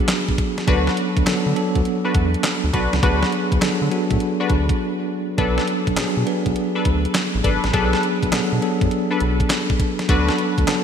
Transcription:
Already playing: tine electric piano F#3 B3 D4 F#4 G#4
0.08 snare, clap, closed hi-hat
0.29 kick
0.38 kick, closed hi-hat
0.58 snare, closed hi-hat
0.67 analog synth bass D2, tine electric piano F#3 B3 D4 A4, analog polysynth D4 F#4 B4, kick, closed hi-hat
0.87 snare
0.97 closed hi-hat
1.17 analog synth bass D2, kick, closed hi-hat
1.26 analog synth bass D3, tine electric piano F#3 B3 D4 A4, snare, clap, closed hi-hat
1.46 analog synth bass D3
1.55 tine electric piano F#3 B3 D4 A4, closed hi-hat
1.75 analog synth bass D2, kick, closed hi-hat
1.85 closed hi-hat
2.05 analog polysynth D4 F#4 B4
2.14 analog synth bass E2, kick, closed hi-hat
2.34 closed hi-hat
2.44 snare, clap, closed hi-hat
2.64 analog synth bass D2
2.73 analog synth bass B1, analog polysynth D4 F#4 B4, kick, closed hi-hat
2.93 analog synth bass C#2, snare, closed hi-hat
3.02 analog synth bass D2, tine electric piano F#3 B3 D4 G#4, analog polysynth D4 F#4 B4, kick, closed hi-hat
3.23 snare
3.32 closed hi-hat
3.52 analog synth bass D2, kick, closed hi-hat
3.61 analog synth bass D3, tine electric piano F#3 B3 D4 A4, snare, clap, closed hi-hat
3.82 analog synth bass D3
3.91 tine electric piano F#3 B3 D4 F#4, closed hi-hat
4.10 analog synth bass A2, kick, closed hi-hat
4.20 closed hi-hat
4.40 analog polysynth D4 F#4 B4
4.50 analog synth bass D2, kick, closed hi-hat
4.69 kick, closed hi-hat
5.38 analog synth bass B1, tine electric piano F#3 B3 D4 A4, analog polysynth D4 A4 B4, kick, closed hi-hat
5.58 snare
5.68 closed hi-hat
5.87 analog synth bass B1, kick, closed hi-hat
5.96 analog synth bass B2, tine electric piano F#3 B3 D4 G#4, snare, clap, closed hi-hat
6.17 analog synth bass B2
6.26 tine electric piano F#3 B3 D4 B4, closed hi-hat
6.46 analog synth bass B1, kick, closed hi-hat
6.56 closed hi-hat
6.75 analog polysynth D4 A4 B4
6.85 analog synth bass D2, kick, closed hi-hat
7.05 closed hi-hat
7.15 snare, clap, closed hi-hat
7.35 analog synth bass A1
7.44 analog synth bass G#1, analog polysynth D4 A4 B4, kick, closed hi-hat
7.64 analog synth bass A1, snare, closed hi-hat
7.73 analog synth bass B1, tine electric piano F#3 B3 D4 G#4, analog polysynth D4 A4 B4, kick, closed hi-hat
7.93 snare
8.03 closed hi-hat
8.23 analog synth bass B1, kick, closed hi-hat
8.32 analog synth bass B2, tine electric piano F#3 B3 D4 A4, snare, clap, closed hi-hat
8.53 analog synth bass B2
8.61 tine electric piano F#3 B3 D4 A4, closed hi-hat
8.81 analog synth bass F#2, kick, closed hi-hat
8.91 closed hi-hat
9.11 analog polysynth D4 A4 B4
9.20 analog synth bass B1, closed hi-hat
9.40 kick, closed hi-hat
9.50 snare, clap, closed hi-hat
9.70 kick
9.80 kick, closed hi-hat
9.99 snare, closed hi-hat
10.08 analog synth bass D2, tine electric piano F#3 B3 D4 A4, analog polysynth D4 F#4 B4, kick, closed hi-hat
10.29 snare
10.38 closed hi-hat
10.58 analog synth bass D2, kick, closed hi-hat
10.67 analog synth bass D3, tine electric piano F#3 B3 D4 A4, snare, clap, closed hi-hat

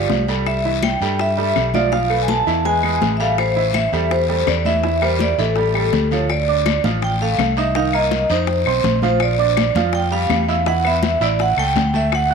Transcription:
Already playing: upright piano F3 F4 G4, vibraphone D5
0.10 fingered electric bass C2, high bongo, low bongo, high conga, short guiro
0.28 upright piano G3 G4 A4, high bongo, short guiro
0.46 vibraphone E5, high bongo, high conga, long guiro, claves
0.65 upright piano E3 E4 E5, high bongo, high conga
0.83 vibraphone G5, high bongo, high conga, short guiro, claves
1.01 fingered electric bass G2, upright piano G3 G4 A4, short guiro
1.19 vibraphone E5, high bongo, high conga, long guiro
1.37 upright piano G3 G4 A4, high bongo, high conga
1.56 fingered electric bass B1, high bongo, low bongo, high conga, short guiro, claves
1.74 upright piano F3 F4 F5, vibraphone D5, high bongo, high conga, short guiro
1.92 upright piano F3 F4 F5, vibraphone F5, high bongo, long guiro
2.09 upright piano A3 A4 B4, high bongo, high conga, claves
2.23 vibraphone G#5
2.28 vibraphone A5, high bongo, high conga, short guiro
2.46 fingered electric bass E2, upright piano E3 E4 E5, high conga, short guiro
2.65 upright piano G#3 G#4 B4, vibraphone G#5, high bongo, high conga, long guiro
2.83 upright piano G#3 G#4 B4, high bongo, high conga, claves
3.01 fingered electric bass A1, high bongo, low bongo, high conga, short guiro
3.17 upright piano G3 G4 A4, vibraphone E5 F5, high bongo, high conga, short guiro
3.38 vibraphone C5, high bongo, high conga, long guiro, claves
3.56 upright piano E3 E4 E5, high bongo, high conga
3.74 vibraphone E5, high bongo, high conga, short guiro, claves
3.92 fingered electric bass E2, upright piano G3 G4 A4, short guiro
4.11 vibraphone C5, high bongo, high conga, long guiro
4.29 upright piano G3 G4 A4, high bongo, high conga
4.47 fingered electric bass E2, vibraphone D5, high bongo, low bongo, high conga, short guiro, claves
4.65 upright piano E3 E4 E5, vibraphone E5, high bongo, high conga, short guiro
4.83 upright piano E3 E4 E5, high bongo, high conga, long guiro
5.02 upright piano G3 G4 A#4, vibraphone C5, high bongo, high conga, claves
5.19 vibraphone D5, high bongo, high conga, short guiro
5.38 fingered electric bass A1, upright piano E3 E4 E5, vibraphone A4, high conga, short guiro
5.56 upright piano G3 G4 A4, high bongo, high conga, long guiro
5.74 upright piano G3 G4 A4, high bongo, high conga, claves
5.92 fingered electric bass D2, high bongo, low bongo, high conga, short guiro
6.11 upright piano F3 F4 A4, vibraphone C#5, high bongo, high conga, short guiro
6.29 vibraphone D5, high bongo, high conga, long guiro, claves
6.48 upright piano D4 D5 D6, high bongo, high conga
6.66 high bongo, high conga, short guiro, claves
6.84 fingered electric bass A1, upright piano F3 F4 F5, high bongo, high conga, short guiro
7.02 vibraphone G5, high bongo, high conga, long guiro
7.21 upright piano A3 A4 A5, vibraphone F5, high bongo, high conga
7.38 fingered electric bass C2, high bongo, low bongo, high conga, short guiro, claves
7.57 upright piano D#4 D#5 D#6, vibraphone E5, short guiro
7.75 upright piano D#3 D#4 D#5, vibraphone F5, high bongo, high conga, long guiro
7.93 upright piano A#3 A#4 A#5, vibraphone D#5, high bongo, high conga, claves
8.11 high bongo, high conga, short guiro
8.29 fingered electric bass F2, upright piano D#4 D#5 D#6, vibraphone C5, high bongo, high conga, short guiro
8.47 high bongo, high conga, long guiro
8.65 fingered electric bass B1, upright piano C4 C5 C6, high bongo, high conga, claves
8.84 fingered electric bass A#1, high bongo, low bongo, high conga, short guiro
9.02 upright piano F3 F4 F5, vibraphone C5, high conga, short guiro
9.20 vibraphone D5, high bongo, long guiro, claves
9.39 upright piano D4 D5 D6, high bongo, high conga
9.57 high bongo, high conga, short guiro, claves
9.75 fingered electric bass F2, upright piano F3 F4 F5, high bongo, high conga, short guiro
9.93 vibraphone G5, high bongo, high conga, long guiro
10.11 upright piano G3 G4 G5, vibraphone F5, high bongo, high conga
10.30 fingered electric bass E2, high bongo, low bongo, high conga, short guiro, claves
10.48 upright piano E4 E5 E6, short guiro
10.66 upright piano E3 E4 E5, vibraphone F#5, high bongo, high conga, long guiro
10.84 upright piano B3 B4 B5, vibraphone E5, high bongo, high conga, claves
11.03 high bongo, high conga, short guiro
11.20 fingered electric bass A1, upright piano E4 E5 E6, vibraphone D5, high bongo, high conga, short guiro
11.39 vibraphone F#5, high bongo, high conga, long guiro
11.57 fingered electric bass C#2, upright piano A3 A4 A5, vibraphone G5, high bongo, high conga, claves
11.76 fingered electric bass D2, high bongo, low bongo, high conga, short guiro
11.93 upright piano A3 A4 A5, vibraphone E5, high conga, short guiro
12.12 vibraphone F#5, high bongo, high conga, long guiro, claves
12.30 upright piano F#4 F#5 F#6, high bongo, high conga

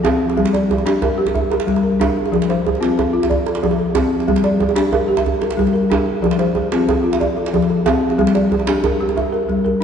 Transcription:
Already playing: balafon A4
0.04 balafon C4, djembe slap, djembe tone, djembe bass
0.30 djembe tone
0.37 balafon G3, djembe bass
0.45 djembe slap
0.53 balafon D5, djembe tone
0.71 djembe bass
0.78 djembe tone
0.86 balafon D4 G4, djembe slap
1.02 balafon A#4, djembe tone, djembe bass
1.18 balafon G4
1.27 djembe slap, djembe tone
1.35 balafon E5, djembe slap, djembe bass
1.50 balafon A#4, djembe tone
1.60 djembe slap
1.67 balafon G3, djembe slap, djembe bass
1.76 djembe slap, djembe tone
1.83 balafon A#4
2.00 balafon D4, djembe slap, djembe tone, djembe bass
2.26 djembe tone
2.32 balafon F3, djembe bass
2.42 djembe slap
2.49 balafon C5, djembe tone
2.66 djembe bass
2.75 djembe tone
2.81 balafon C4 F4, djembe slap
2.98 balafon A4, djembe tone, djembe bass
3.13 balafon F4
3.23 djembe slap, djembe tone
3.30 balafon D5, djembe slap, djembe bass
3.39 djembe slap
3.46 balafon A4, djembe slap, djembe tone
3.55 djembe slap
3.63 balafon F3, djembe bass
3.71 djembe tone
3.79 balafon A4, djembe slap
3.95 balafon C4, djembe slap, djembe tone, djembe bass
4.20 djembe tone
4.28 balafon G3, djembe bass
4.36 djembe slap
4.44 balafon D5, djembe tone
4.60 djembe bass
4.69 djembe tone
4.75 balafon D4 G4, djembe slap
4.92 balafon A#4, djembe tone, djembe bass
5.08 balafon G4
5.17 djembe slap, djembe tone
5.26 djembe slap, djembe bass
5.34 djembe slap
5.41 balafon A#4, djembe slap, djembe tone
5.51 djembe slap
5.57 balafon G3, djembe bass
5.67 djembe tone
5.73 balafon A#4, djembe slap
5.90 balafon D4, djembe slap, djembe tone, djembe bass
6.22 balafon F3, djembe bass
6.31 djembe slap
6.39 balafon C5, djembe tone
6.55 djembe bass
6.72 balafon C4 F4, djembe slap
6.89 balafon A4, djembe tone, djembe bass
7.04 balafon F4
7.13 djembe slap, djembe tone
7.20 balafon D5, djembe slap, djembe bass
7.30 djembe slap
7.37 balafon A4, djembe slap
7.46 djembe slap
7.53 balafon F3, djembe bass
7.62 djembe tone
7.70 balafon A4, djembe slap
7.86 balafon C4, djembe slap, djembe tone, djembe bass
8.10 djembe tone
8.18 balafon G3, djembe bass
8.27 djembe slap
8.35 balafon D5, djembe slap, djembe tone
8.52 djembe bass
8.59 djembe tone
8.67 balafon D4 G4, djembe slap
8.84 balafon A#4, djembe tone, djembe bass
9.01 balafon G4, djembe slap
9.09 djembe tone
9.17 balafon E5, djembe slap, djembe bass
9.26 djembe slap
9.32 balafon A#4, djembe bass
9.49 balafon G3, djembe bass
9.65 balafon A#4, djembe bass
9.80 balafon D4

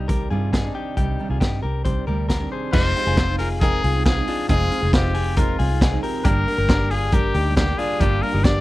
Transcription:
Already playing: fingered electric bass C2
0.08 steel-string acoustic guitar C3 D#3 G3 C4 D4 G4, clean electric guitar G4 A#4, kick, closed hi-hat
0.30 fingered electric bass G2, steel-string acoustic guitar C3 D#3 G3 C4 D4 G4, clean electric guitar F4 G#4
0.53 clean electric guitar D#4 G#4, kick, snare, closed hi-hat
0.64 steel-string acoustic guitar C3 D#3 G3 C4 D4 G4
0.75 clean electric guitar D#4 G4
0.97 fingered electric bass C2, steel-string acoustic guitar C3 D#3 G3 C4 D4 G4, clean electric guitar D#4 G4, kick, closed hi-hat
1.19 steel-string acoustic guitar C3 D#3 G3 C4 D4 G4
1.30 fingered electric bass C2, clean electric guitar F4 G#4
1.40 fingered electric bass G2, clean electric guitar D#4 G4, kick, snare, closed hi-hat
1.62 fingered electric bass C2, steel-string acoustic guitar G3 C4 D4 G4, clean electric guitar G4 A#4
1.85 steel-string acoustic guitar C3 D#3 G3 C4 D4 G4, clean electric guitar G4 C5, kick, closed hi-hat
2.06 fingered electric bass D2, steel-string acoustic guitar C3 G3 C4 D4 G4, clean electric guitar G4 A#4
2.29 clean electric guitar G4 A#4, kick, snare, closed hi-hat
2.39 steel-string acoustic guitar C3 D#3 G3 C4 D4 G4
2.52 clean electric guitar G#4 C5
2.72 fingered electric bass F1, steel-string acoustic guitar F3 C4 D#4 G#4, upright piano G#3 C4 D#4 F4, clean electric guitar C4 F4, trumpet C5, kick, crash
2.96 upright piano G#3 C4 D#4 G4, open hi-hat
3.05 fingered electric bass F1, steel-string acoustic guitar C4 D#4 G#4, clean electric guitar F4 G#4
3.17 upright piano G#3 C4 D#4 F4, clean electric guitar C4 F4, kick, snare, hi-hat pedal, ride
3.27 steel-string acoustic guitar C4 D#4 G#4
3.38 clean electric guitar F4 G#4, trumpet A#4, open hi-hat
3.60 steel-string acoustic guitar F3 C4 D#4 G#4, upright piano G#3 C4 D#4 G5, clean electric guitar F4 A#4, trumpet G#4, kick, hi-hat pedal, ride
3.84 fingered electric bass C2, clean electric guitar F4 G#4, open hi-hat
3.94 steel-string acoustic guitar C4 D#4 G#4
4.05 upright piano G#3 C4 D#4 F4, clean electric guitar F4 G#4, trumpet G#4, kick, snare, hi-hat pedal, ride
4.17 steel-string acoustic guitar F3 C4 D#4 G#4
4.27 clean electric guitar D4 F4, open hi-hat
4.49 fingered electric bass F1, steel-string acoustic guitar F3 C4 D#4 G#4, upright piano G#3 C4 D#4 F4, clean electric guitar C4 F4, trumpet G#4, kick, hi-hat pedal, ride
4.71 upright piano G#3 C4 D#4 F4, open hi-hat
4.82 fingered electric bass F1, steel-string acoustic guitar C4 D#4 G#4, clean electric guitar F4 G#4
4.93 upright piano G#3 C4 D#4 F4, clean electric guitar C4 F4, trumpet G4, kick, snare, hi-hat pedal, ride
5.05 steel-string acoustic guitar C4 D#4
5.14 clean electric guitar F4 G#4, open hi-hat
5.36 steel-string acoustic guitar F3 C4 D#4 G#4, upright piano G#3 C4 D#4 F4, clean electric guitar F4 A#4, trumpet F4, kick, hi-hat pedal, ride
5.59 fingered electric bass C2, clean electric guitar F4 G#4, open hi-hat
5.70 steel-string acoustic guitar C4 D#4 G#4
5.81 upright piano G#3 C4 D#4 F4, clean electric guitar F4 G#4, kick, snare, hi-hat pedal, ride
5.92 steel-string acoustic guitar F3 C4 D#4 G#4
6.03 clean electric guitar G4 A#4, open hi-hat
6.24 fingered electric bass G1, steel-string acoustic guitar G3 A#3 D4 G4, upright piano G3 A#3 D4 G4, clean electric guitar D4 G4, trumpet A#4, kick, hi-hat pedal, ride
6.47 upright piano G3 A#3 D4 A#4, open hi-hat
6.57 fingered electric bass G1, steel-string acoustic guitar G3 A#3 D4 G4, clean electric guitar G4 A#4
6.68 upright piano G3 A#3 D4 G4, clean electric guitar D4 G4, kick, snare, hi-hat pedal, ride
6.79 steel-string acoustic guitar G3 A#3 D4 G4
6.91 clean electric guitar F4 G#4, trumpet G#4, open hi-hat
7.12 steel-string acoustic guitar G3 A#3 D4 G4, upright piano G3 A#3 D4 G4, trumpet G4, clean electric guitar G4 A#4, kick, hi-hat pedal, ride
7.34 fingered electric bass D2, clean electric guitar D#4 G4, open hi-hat
7.45 steel-string acoustic guitar G3 A#3 D4 G4
7.56 upright piano G3 A#3 D4 G4, clean electric guitar D4 G4, trumpet G4, kick, snare, hi-hat pedal, ride
7.66 steel-string acoustic guitar G2 D3 G3 A#3 D4 G4
7.78 clean electric guitar D4 F4, trumpet G#4, open hi-hat
7.99 fingered electric bass G1, steel-string acoustic guitar G3 A#3 D4 G4, upright piano G3 A#3 D4 F4, clean electric guitar D4 F4, trumpet G4, kick, hi-hat pedal, ride
8.22 upright piano G3 A#3 D4 G4, trumpet A#4, open hi-hat
8.32 fingered electric bass G1, steel-string acoustic guitar G3 A#3 D4 G4, clean electric guitar D#4 G4
8.44 upright piano G3 A#3 D4 G4, clean electric guitar D4 G4, trumpet D5, kick, snare, hi-hat pedal, ride
8.54 steel-string acoustic guitar G3 A#3 D4 G4

